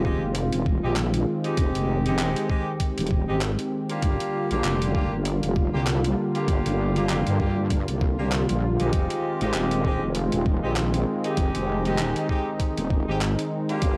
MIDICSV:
0, 0, Header, 1, 5, 480
1, 0, Start_track
1, 0, Tempo, 612245
1, 1240, Time_signature, 4, 2, 24, 8
1, 10953, End_track
2, 0, Start_track
2, 0, Title_t, "Horn section"
2, 0, Program_c, 0, 61
2, 38, Note_on_c, 0, 56, 90
2, 38, Note_on_c, 0, 60, 84
2, 38, Note_on_c, 0, 63, 85
2, 38, Note_on_c, 0, 67, 99
2, 197, Note_off_c, 0, 56, 0
2, 197, Note_off_c, 0, 63, 0
2, 197, Note_off_c, 0, 67, 0
2, 198, Note_off_c, 0, 60, 0
2, 656, Note_on_c, 0, 67, 92
2, 657, Note_on_c, 0, 56, 82
2, 657, Note_on_c, 0, 60, 77
2, 657, Note_on_c, 0, 63, 76
2, 733, Note_off_c, 0, 63, 0
2, 733, Note_off_c, 0, 67, 0
2, 734, Note_off_c, 0, 56, 0
2, 734, Note_off_c, 0, 60, 0
2, 1137, Note_on_c, 0, 56, 78
2, 1137, Note_on_c, 0, 63, 70
2, 1138, Note_on_c, 0, 60, 70
2, 1138, Note_on_c, 0, 67, 86
2, 1584, Note_off_c, 0, 56, 0
2, 1584, Note_off_c, 0, 60, 0
2, 1584, Note_off_c, 0, 63, 0
2, 1584, Note_off_c, 0, 67, 0
2, 1616, Note_on_c, 0, 60, 80
2, 1617, Note_on_c, 0, 56, 85
2, 1617, Note_on_c, 0, 63, 77
2, 1617, Note_on_c, 0, 67, 93
2, 1934, Note_off_c, 0, 56, 0
2, 1934, Note_off_c, 0, 60, 0
2, 1934, Note_off_c, 0, 67, 0
2, 1935, Note_off_c, 0, 63, 0
2, 1958, Note_on_c, 0, 56, 91
2, 1958, Note_on_c, 0, 60, 84
2, 1959, Note_on_c, 0, 63, 83
2, 1959, Note_on_c, 0, 67, 100
2, 2117, Note_off_c, 0, 60, 0
2, 2118, Note_off_c, 0, 56, 0
2, 2118, Note_off_c, 0, 63, 0
2, 2118, Note_off_c, 0, 67, 0
2, 2576, Note_on_c, 0, 67, 91
2, 2577, Note_on_c, 0, 56, 84
2, 2577, Note_on_c, 0, 63, 78
2, 2578, Note_on_c, 0, 60, 77
2, 2653, Note_off_c, 0, 67, 0
2, 2654, Note_off_c, 0, 56, 0
2, 2654, Note_off_c, 0, 60, 0
2, 2654, Note_off_c, 0, 63, 0
2, 3060, Note_on_c, 0, 62, 72
2, 3061, Note_on_c, 0, 65, 70
2, 3061, Note_on_c, 0, 67, 85
2, 3062, Note_on_c, 0, 58, 79
2, 3506, Note_off_c, 0, 62, 0
2, 3506, Note_off_c, 0, 65, 0
2, 3506, Note_off_c, 0, 67, 0
2, 3507, Note_off_c, 0, 58, 0
2, 3540, Note_on_c, 0, 58, 85
2, 3540, Note_on_c, 0, 62, 77
2, 3540, Note_on_c, 0, 65, 77
2, 3540, Note_on_c, 0, 67, 93
2, 3856, Note_off_c, 0, 58, 0
2, 3856, Note_off_c, 0, 62, 0
2, 3856, Note_off_c, 0, 65, 0
2, 3856, Note_off_c, 0, 67, 0
2, 3880, Note_on_c, 0, 65, 85
2, 3881, Note_on_c, 0, 58, 93
2, 3881, Note_on_c, 0, 67, 103
2, 3882, Note_on_c, 0, 62, 85
2, 4039, Note_off_c, 0, 58, 0
2, 4039, Note_off_c, 0, 62, 0
2, 4039, Note_off_c, 0, 65, 0
2, 4039, Note_off_c, 0, 67, 0
2, 4499, Note_on_c, 0, 67, 94
2, 4500, Note_on_c, 0, 62, 78
2, 4501, Note_on_c, 0, 58, 83
2, 4501, Note_on_c, 0, 65, 79
2, 4574, Note_off_c, 0, 67, 0
2, 4575, Note_off_c, 0, 62, 0
2, 4575, Note_off_c, 0, 65, 0
2, 4576, Note_off_c, 0, 58, 0
2, 4981, Note_on_c, 0, 62, 69
2, 4981, Note_on_c, 0, 65, 70
2, 4981, Note_on_c, 0, 67, 84
2, 4983, Note_on_c, 0, 58, 77
2, 5426, Note_off_c, 0, 62, 0
2, 5426, Note_off_c, 0, 65, 0
2, 5426, Note_off_c, 0, 67, 0
2, 5427, Note_off_c, 0, 58, 0
2, 5459, Note_on_c, 0, 58, 84
2, 5459, Note_on_c, 0, 62, 79
2, 5459, Note_on_c, 0, 65, 78
2, 5460, Note_on_c, 0, 67, 92
2, 5776, Note_off_c, 0, 58, 0
2, 5776, Note_off_c, 0, 62, 0
2, 5776, Note_off_c, 0, 65, 0
2, 5776, Note_off_c, 0, 67, 0
2, 5802, Note_on_c, 0, 65, 83
2, 5803, Note_on_c, 0, 58, 92
2, 5803, Note_on_c, 0, 62, 83
2, 5803, Note_on_c, 0, 67, 101
2, 5959, Note_off_c, 0, 65, 0
2, 5960, Note_off_c, 0, 58, 0
2, 5960, Note_off_c, 0, 62, 0
2, 5960, Note_off_c, 0, 67, 0
2, 6418, Note_on_c, 0, 58, 83
2, 6418, Note_on_c, 0, 62, 75
2, 6418, Note_on_c, 0, 65, 77
2, 6418, Note_on_c, 0, 67, 92
2, 6494, Note_off_c, 0, 58, 0
2, 6494, Note_off_c, 0, 62, 0
2, 6494, Note_off_c, 0, 65, 0
2, 6494, Note_off_c, 0, 67, 0
2, 6899, Note_on_c, 0, 67, 84
2, 6900, Note_on_c, 0, 56, 76
2, 6900, Note_on_c, 0, 63, 70
2, 6901, Note_on_c, 0, 60, 69
2, 7345, Note_off_c, 0, 67, 0
2, 7346, Note_off_c, 0, 56, 0
2, 7346, Note_off_c, 0, 60, 0
2, 7346, Note_off_c, 0, 63, 0
2, 7381, Note_on_c, 0, 67, 94
2, 7383, Note_on_c, 0, 56, 86
2, 7383, Note_on_c, 0, 60, 76
2, 7383, Note_on_c, 0, 63, 77
2, 7697, Note_off_c, 0, 60, 0
2, 7697, Note_off_c, 0, 67, 0
2, 7698, Note_off_c, 0, 56, 0
2, 7698, Note_off_c, 0, 63, 0
2, 7724, Note_on_c, 0, 60, 83
2, 7724, Note_on_c, 0, 63, 85
2, 7725, Note_on_c, 0, 56, 90
2, 7725, Note_on_c, 0, 67, 103
2, 7880, Note_off_c, 0, 60, 0
2, 7880, Note_off_c, 0, 63, 0
2, 7881, Note_off_c, 0, 56, 0
2, 7881, Note_off_c, 0, 67, 0
2, 8338, Note_on_c, 0, 63, 77
2, 8339, Note_on_c, 0, 56, 84
2, 8339, Note_on_c, 0, 60, 79
2, 8339, Note_on_c, 0, 67, 94
2, 8414, Note_off_c, 0, 56, 0
2, 8414, Note_off_c, 0, 63, 0
2, 8415, Note_off_c, 0, 60, 0
2, 8415, Note_off_c, 0, 67, 0
2, 8820, Note_on_c, 0, 67, 86
2, 8821, Note_on_c, 0, 60, 71
2, 8822, Note_on_c, 0, 56, 76
2, 8822, Note_on_c, 0, 63, 72
2, 9266, Note_off_c, 0, 60, 0
2, 9266, Note_off_c, 0, 67, 0
2, 9267, Note_off_c, 0, 56, 0
2, 9267, Note_off_c, 0, 63, 0
2, 9299, Note_on_c, 0, 56, 88
2, 9299, Note_on_c, 0, 60, 79
2, 9299, Note_on_c, 0, 63, 79
2, 9299, Note_on_c, 0, 67, 97
2, 9616, Note_off_c, 0, 56, 0
2, 9616, Note_off_c, 0, 60, 0
2, 9616, Note_off_c, 0, 63, 0
2, 9616, Note_off_c, 0, 67, 0
2, 9640, Note_on_c, 0, 63, 84
2, 9641, Note_on_c, 0, 60, 83
2, 9641, Note_on_c, 0, 67, 101
2, 9642, Note_on_c, 0, 56, 92
2, 9799, Note_off_c, 0, 56, 0
2, 9799, Note_off_c, 0, 60, 0
2, 9799, Note_off_c, 0, 63, 0
2, 9799, Note_off_c, 0, 67, 0
2, 10259, Note_on_c, 0, 63, 78
2, 10259, Note_on_c, 0, 67, 95
2, 10260, Note_on_c, 0, 56, 87
2, 10260, Note_on_c, 0, 60, 78
2, 10334, Note_off_c, 0, 63, 0
2, 10335, Note_off_c, 0, 56, 0
2, 10335, Note_off_c, 0, 60, 0
2, 10335, Note_off_c, 0, 67, 0
2, 10737, Note_on_c, 0, 65, 72
2, 10738, Note_on_c, 0, 58, 78
2, 10738, Note_on_c, 0, 62, 72
2, 10739, Note_on_c, 0, 67, 88
2, 10953, Note_off_c, 0, 58, 0
2, 10953, Note_off_c, 0, 62, 0
2, 10953, Note_off_c, 0, 65, 0
2, 10953, Note_off_c, 0, 67, 0
2, 10953, End_track
3, 0, Start_track
3, 0, Title_t, "Analog synth pad"
3, 0, Program_c, 1, 89
3, 0, Note_on_c, 1, 51, 76
3, 0, Note_on_c, 1, 56, 72
3, 0, Note_on_c, 1, 60, 72
3, 0, Note_on_c, 1, 65, 85
3, 1218, Note_off_c, 1, 65, 0
3, 1238, Note_on_c, 1, 67, 86
3, 3126, Note_off_c, 1, 51, 0
3, 3127, Note_off_c, 1, 56, 0
3, 3127, Note_off_c, 1, 60, 0
3, 3140, Note_off_c, 1, 67, 0
3, 3162, Note_on_c, 1, 50, 80
3, 3162, Note_on_c, 1, 55, 72
3, 3162, Note_on_c, 1, 58, 71
3, 3162, Note_on_c, 1, 65, 84
3, 6969, Note_off_c, 1, 50, 0
3, 6969, Note_off_c, 1, 58, 0
3, 6970, Note_off_c, 1, 55, 0
3, 6999, Note_on_c, 1, 56, 72
3, 7001, Note_on_c, 1, 51, 77
3, 7001, Note_on_c, 1, 60, 73
3, 8889, Note_off_c, 1, 65, 0
3, 8917, Note_on_c, 1, 63, 87
3, 10808, Note_off_c, 1, 56, 0
3, 10809, Note_off_c, 1, 51, 0
3, 10809, Note_off_c, 1, 60, 0
3, 10819, Note_off_c, 1, 63, 0
3, 10835, Note_on_c, 1, 55, 72
3, 10836, Note_on_c, 1, 50, 77
3, 10837, Note_on_c, 1, 65, 87
3, 10838, Note_on_c, 1, 58, 74
3, 10953, Note_off_c, 1, 50, 0
3, 10953, Note_off_c, 1, 55, 0
3, 10953, Note_off_c, 1, 58, 0
3, 10953, Note_off_c, 1, 65, 0
3, 10953, End_track
4, 0, Start_track
4, 0, Title_t, "Wobble bass"
4, 0, Program_c, 2, 39
4, 0, Note_on_c, 2, 27, 95
4, 155, Note_off_c, 2, 27, 0
4, 175, Note_on_c, 2, 29, 91
4, 394, Note_off_c, 2, 29, 0
4, 417, Note_on_c, 2, 27, 90
4, 636, Note_off_c, 2, 27, 0
4, 656, Note_on_c, 2, 34, 94
4, 982, Note_off_c, 2, 34, 0
4, 1237, Note_on_c, 2, 29, 99
4, 1354, Note_off_c, 2, 29, 0
4, 1376, Note_on_c, 2, 29, 94
4, 1698, Note_off_c, 2, 29, 0
4, 1698, Note_on_c, 2, 28, 94
4, 1835, Note_off_c, 2, 28, 0
4, 2338, Note_on_c, 2, 27, 89
4, 2556, Note_off_c, 2, 27, 0
4, 2579, Note_on_c, 2, 32, 91
4, 2796, Note_off_c, 2, 32, 0
4, 3158, Note_on_c, 2, 31, 95
4, 3275, Note_off_c, 2, 31, 0
4, 3538, Note_on_c, 2, 34, 93
4, 3623, Note_off_c, 2, 34, 0
4, 3642, Note_on_c, 2, 29, 96
4, 3997, Note_off_c, 2, 29, 0
4, 4019, Note_on_c, 2, 31, 92
4, 4237, Note_off_c, 2, 31, 0
4, 4260, Note_on_c, 2, 29, 90
4, 4477, Note_off_c, 2, 29, 0
4, 4503, Note_on_c, 2, 36, 93
4, 4825, Note_off_c, 2, 36, 0
4, 5079, Note_on_c, 2, 31, 94
4, 5196, Note_off_c, 2, 31, 0
4, 5220, Note_on_c, 2, 31, 97
4, 5542, Note_off_c, 2, 31, 0
4, 5542, Note_on_c, 2, 30, 97
4, 5677, Note_off_c, 2, 30, 0
4, 5702, Note_on_c, 2, 43, 93
4, 6158, Note_off_c, 2, 43, 0
4, 6180, Note_on_c, 2, 36, 94
4, 6637, Note_off_c, 2, 36, 0
4, 6664, Note_on_c, 2, 34, 92
4, 6879, Note_off_c, 2, 34, 0
4, 6904, Note_on_c, 2, 34, 94
4, 6986, Note_off_c, 2, 34, 0
4, 7000, Note_on_c, 2, 29, 98
4, 7116, Note_off_c, 2, 29, 0
4, 7381, Note_on_c, 2, 32, 92
4, 7465, Note_off_c, 2, 32, 0
4, 7483, Note_on_c, 2, 27, 97
4, 7837, Note_off_c, 2, 27, 0
4, 7859, Note_on_c, 2, 29, 95
4, 8076, Note_off_c, 2, 29, 0
4, 8100, Note_on_c, 2, 27, 92
4, 8317, Note_off_c, 2, 27, 0
4, 8339, Note_on_c, 2, 34, 94
4, 8664, Note_off_c, 2, 34, 0
4, 8920, Note_on_c, 2, 29, 96
4, 9036, Note_off_c, 2, 29, 0
4, 9060, Note_on_c, 2, 29, 96
4, 9382, Note_off_c, 2, 29, 0
4, 9382, Note_on_c, 2, 28, 96
4, 9517, Note_off_c, 2, 28, 0
4, 10018, Note_on_c, 2, 27, 91
4, 10236, Note_off_c, 2, 27, 0
4, 10256, Note_on_c, 2, 32, 97
4, 10475, Note_off_c, 2, 32, 0
4, 10837, Note_on_c, 2, 31, 98
4, 10953, Note_off_c, 2, 31, 0
4, 10953, End_track
5, 0, Start_track
5, 0, Title_t, "Drums"
5, 38, Note_on_c, 9, 36, 58
5, 117, Note_off_c, 9, 36, 0
5, 272, Note_on_c, 9, 42, 77
5, 350, Note_off_c, 9, 42, 0
5, 411, Note_on_c, 9, 42, 53
5, 490, Note_off_c, 9, 42, 0
5, 518, Note_on_c, 9, 36, 98
5, 596, Note_off_c, 9, 36, 0
5, 752, Note_on_c, 9, 39, 117
5, 752, Note_on_c, 9, 42, 81
5, 830, Note_off_c, 9, 39, 0
5, 830, Note_off_c, 9, 42, 0
5, 892, Note_on_c, 9, 42, 51
5, 970, Note_off_c, 9, 42, 0
5, 1132, Note_on_c, 9, 42, 37
5, 1210, Note_off_c, 9, 42, 0
5, 1233, Note_on_c, 9, 42, 80
5, 1237, Note_on_c, 9, 36, 119
5, 1312, Note_off_c, 9, 42, 0
5, 1316, Note_off_c, 9, 36, 0
5, 1374, Note_on_c, 9, 42, 53
5, 1452, Note_off_c, 9, 42, 0
5, 1613, Note_on_c, 9, 42, 37
5, 1691, Note_off_c, 9, 42, 0
5, 1714, Note_on_c, 9, 39, 118
5, 1714, Note_on_c, 9, 42, 79
5, 1792, Note_off_c, 9, 39, 0
5, 1792, Note_off_c, 9, 42, 0
5, 1853, Note_on_c, 9, 42, 53
5, 1932, Note_off_c, 9, 42, 0
5, 1957, Note_on_c, 9, 36, 62
5, 2035, Note_off_c, 9, 36, 0
5, 2195, Note_on_c, 9, 42, 80
5, 2197, Note_on_c, 9, 36, 62
5, 2273, Note_off_c, 9, 42, 0
5, 2275, Note_off_c, 9, 36, 0
5, 2334, Note_on_c, 9, 42, 51
5, 2356, Note_off_c, 9, 42, 0
5, 2356, Note_on_c, 9, 42, 42
5, 2404, Note_off_c, 9, 42, 0
5, 2404, Note_on_c, 9, 42, 34
5, 2437, Note_on_c, 9, 36, 101
5, 2482, Note_off_c, 9, 42, 0
5, 2515, Note_off_c, 9, 36, 0
5, 2676, Note_on_c, 9, 39, 120
5, 2676, Note_on_c, 9, 42, 83
5, 2754, Note_off_c, 9, 39, 0
5, 2754, Note_off_c, 9, 42, 0
5, 2814, Note_on_c, 9, 42, 53
5, 2892, Note_off_c, 9, 42, 0
5, 3055, Note_on_c, 9, 42, 37
5, 3133, Note_off_c, 9, 42, 0
5, 3156, Note_on_c, 9, 42, 80
5, 3158, Note_on_c, 9, 36, 118
5, 3234, Note_off_c, 9, 42, 0
5, 3236, Note_off_c, 9, 36, 0
5, 3296, Note_on_c, 9, 42, 51
5, 3375, Note_off_c, 9, 42, 0
5, 3535, Note_on_c, 9, 42, 36
5, 3613, Note_off_c, 9, 42, 0
5, 3639, Note_on_c, 9, 39, 119
5, 3639, Note_on_c, 9, 42, 79
5, 3717, Note_off_c, 9, 39, 0
5, 3717, Note_off_c, 9, 42, 0
5, 3777, Note_on_c, 9, 42, 53
5, 3856, Note_off_c, 9, 42, 0
5, 3879, Note_on_c, 9, 36, 62
5, 3957, Note_off_c, 9, 36, 0
5, 4118, Note_on_c, 9, 42, 79
5, 4196, Note_off_c, 9, 42, 0
5, 4258, Note_on_c, 9, 42, 52
5, 4336, Note_off_c, 9, 42, 0
5, 4360, Note_on_c, 9, 36, 104
5, 4438, Note_off_c, 9, 36, 0
5, 4599, Note_on_c, 9, 39, 121
5, 4599, Note_on_c, 9, 42, 80
5, 4678, Note_off_c, 9, 39, 0
5, 4678, Note_off_c, 9, 42, 0
5, 4739, Note_on_c, 9, 42, 52
5, 4817, Note_off_c, 9, 42, 0
5, 4978, Note_on_c, 9, 42, 35
5, 5057, Note_off_c, 9, 42, 0
5, 5080, Note_on_c, 9, 36, 115
5, 5080, Note_on_c, 9, 42, 74
5, 5158, Note_off_c, 9, 42, 0
5, 5159, Note_off_c, 9, 36, 0
5, 5220, Note_on_c, 9, 42, 50
5, 5299, Note_off_c, 9, 42, 0
5, 5457, Note_on_c, 9, 42, 34
5, 5535, Note_off_c, 9, 42, 0
5, 5560, Note_on_c, 9, 39, 116
5, 5560, Note_on_c, 9, 42, 75
5, 5638, Note_off_c, 9, 39, 0
5, 5638, Note_off_c, 9, 42, 0
5, 5697, Note_on_c, 9, 42, 49
5, 5775, Note_off_c, 9, 42, 0
5, 5800, Note_on_c, 9, 36, 59
5, 5879, Note_off_c, 9, 36, 0
5, 6040, Note_on_c, 9, 42, 73
5, 6041, Note_on_c, 9, 36, 61
5, 6118, Note_off_c, 9, 42, 0
5, 6119, Note_off_c, 9, 36, 0
5, 6178, Note_on_c, 9, 42, 51
5, 6257, Note_off_c, 9, 42, 0
5, 6281, Note_on_c, 9, 36, 103
5, 6359, Note_off_c, 9, 36, 0
5, 6519, Note_on_c, 9, 39, 120
5, 6519, Note_on_c, 9, 42, 76
5, 6598, Note_off_c, 9, 39, 0
5, 6598, Note_off_c, 9, 42, 0
5, 6656, Note_on_c, 9, 42, 50
5, 6734, Note_off_c, 9, 42, 0
5, 6896, Note_on_c, 9, 42, 35
5, 6974, Note_off_c, 9, 42, 0
5, 6999, Note_on_c, 9, 42, 73
5, 7001, Note_on_c, 9, 36, 117
5, 7077, Note_off_c, 9, 42, 0
5, 7079, Note_off_c, 9, 36, 0
5, 7137, Note_on_c, 9, 42, 48
5, 7215, Note_off_c, 9, 42, 0
5, 7378, Note_on_c, 9, 42, 34
5, 7456, Note_off_c, 9, 42, 0
5, 7476, Note_on_c, 9, 39, 113
5, 7476, Note_on_c, 9, 42, 72
5, 7555, Note_off_c, 9, 39, 0
5, 7555, Note_off_c, 9, 42, 0
5, 7615, Note_on_c, 9, 42, 48
5, 7694, Note_off_c, 9, 42, 0
5, 7720, Note_on_c, 9, 36, 59
5, 7799, Note_off_c, 9, 36, 0
5, 7956, Note_on_c, 9, 42, 70
5, 8034, Note_off_c, 9, 42, 0
5, 8093, Note_on_c, 9, 42, 50
5, 8171, Note_off_c, 9, 42, 0
5, 8200, Note_on_c, 9, 36, 97
5, 8278, Note_off_c, 9, 36, 0
5, 8436, Note_on_c, 9, 39, 117
5, 8436, Note_on_c, 9, 42, 75
5, 8514, Note_off_c, 9, 39, 0
5, 8514, Note_off_c, 9, 42, 0
5, 8576, Note_on_c, 9, 42, 49
5, 8654, Note_off_c, 9, 42, 0
5, 8814, Note_on_c, 9, 42, 34
5, 8893, Note_off_c, 9, 42, 0
5, 8915, Note_on_c, 9, 42, 73
5, 8919, Note_on_c, 9, 36, 108
5, 8993, Note_off_c, 9, 42, 0
5, 8997, Note_off_c, 9, 36, 0
5, 9054, Note_on_c, 9, 42, 48
5, 9132, Note_off_c, 9, 42, 0
5, 9294, Note_on_c, 9, 42, 34
5, 9372, Note_off_c, 9, 42, 0
5, 9395, Note_on_c, 9, 39, 109
5, 9395, Note_on_c, 9, 42, 70
5, 9474, Note_off_c, 9, 39, 0
5, 9474, Note_off_c, 9, 42, 0
5, 9534, Note_on_c, 9, 42, 47
5, 9613, Note_off_c, 9, 42, 0
5, 9638, Note_on_c, 9, 36, 55
5, 9717, Note_off_c, 9, 36, 0
5, 9876, Note_on_c, 9, 42, 72
5, 9878, Note_on_c, 9, 36, 58
5, 9955, Note_off_c, 9, 42, 0
5, 9956, Note_off_c, 9, 36, 0
5, 10016, Note_on_c, 9, 42, 47
5, 10095, Note_off_c, 9, 42, 0
5, 10117, Note_on_c, 9, 36, 97
5, 10196, Note_off_c, 9, 36, 0
5, 10358, Note_on_c, 9, 39, 115
5, 10358, Note_on_c, 9, 42, 75
5, 10436, Note_off_c, 9, 39, 0
5, 10436, Note_off_c, 9, 42, 0
5, 10496, Note_on_c, 9, 42, 49
5, 10575, Note_off_c, 9, 42, 0
5, 10735, Note_on_c, 9, 42, 34
5, 10814, Note_off_c, 9, 42, 0
5, 10834, Note_on_c, 9, 42, 75
5, 10837, Note_on_c, 9, 36, 108
5, 10912, Note_off_c, 9, 42, 0
5, 10916, Note_off_c, 9, 36, 0
5, 10953, End_track
0, 0, End_of_file